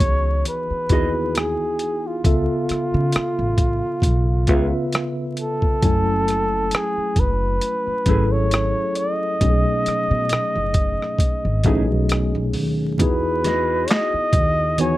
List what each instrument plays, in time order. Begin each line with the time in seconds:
Already playing: tine electric piano E3 B3 D#4 F#4 G#4 G#5, flugelhorn C#5
0.00 upright bass C#2, kick, closed hi-hat
0.45 flugelhorn B4, closed hi-hat
0.70 muted upright bass stroke
0.89 upright bass D#2, tine electric piano B3 D#4 E4 F#4 G#4, clean electric guitar F#4 G#4 D#5, kick, closed hi-hat
1.35 flugelhorn G#4, cross-stick, closed hi-hat
1.79 closed hi-hat
2.07 flugelhorn F4
2.24 upright bass C#2, tine electric piano C#3 B3 F4 A4 E5, kick, closed hi-hat
2.69 muted upright bass stroke, cross-stick, closed hi-hat
2.94 upright bass C#3
3.12 muted upright bass stroke, cross-stick, closed hi-hat
3.39 upright bass A1
3.58 kick, closed hi-hat
4.02 upright bass B1, kick, closed hi-hat
4.47 upright bass C#2, tine electric piano C#3 B3 F4 B4 E5, clean electric guitar F4 B4 C#5, kick, closed hi-hat
4.93 cross-stick, closed hi-hat
5.37 flugelhorn A4, closed hi-hat
5.62 kick
5.82 upright bass F#1, tine electric piano F#3 A3 C#4 E4 G#5, kick, closed hi-hat
6.28 cross-stick, closed hi-hat
6.71 flugelhorn G#4, cross-stick, closed hi-hat
6.97 muted upright bass stroke
7.16 upright bass F#1, flugelhorn B4, kick, closed hi-hat
7.61 closed hi-hat
7.87 muted upright bass stroke
8.06 upright bass G#1, tine electric piano F#3 C#4 E4 G#4 A4, clean electric guitar A3 E4 G#4, kick, closed hi-hat
8.32 flugelhorn C#5
8.51 cross-stick, closed hi-hat
8.95 flugelhorn D#5, closed hi-hat
9.41 upright bass B1, tine electric piano B2 F#3 A3 C#4 D#4 G4, kick, closed hi-hat
9.50 tine electric piano G#4
9.86 muted upright bass stroke, cross-stick, closed hi-hat
10.11 upright bass B2
10.29 muted upright bass stroke, cross-stick, closed hi-hat
10.56 upright bass F#1
10.74 kick, closed hi-hat
11.02 cross-stick
11.18 kick, closed hi-hat
11.45 upright bass G#1
11.64 upright bass A1, tine electric piano B2 F#3 A3 C#4 D#4 G#4, clean electric guitar A3 D#4 G#4, kick, closed hi-hat
11.90 upright bass B1
12.09 cross-stick, closed hi-hat
12.35 upright bass B1
12.53 upright bass D#2, open hi-hat
12.98 upright bass E2, tine electric piano B3 D#4 E4 F#4 G#4, flugelhorn B4, kick, closed hi-hat, low conga
13.44 clean electric guitar F#4 G#4 D#5, snare, closed hi-hat, high conga
13.88 clean electric guitar F#4, flugelhorn D#5, snare, clap, closed hi-hat
13.92 clean electric guitar G#4 D#5
14.14 muted upright bass stroke
14.33 upright bass D#2, kick, closed hi-hat, muted conga, low conga
14.78 tine electric piano E3 B3 D#4 F#4 G#5, flugelhorn C#5, closed hi-hat, muted conga, high conga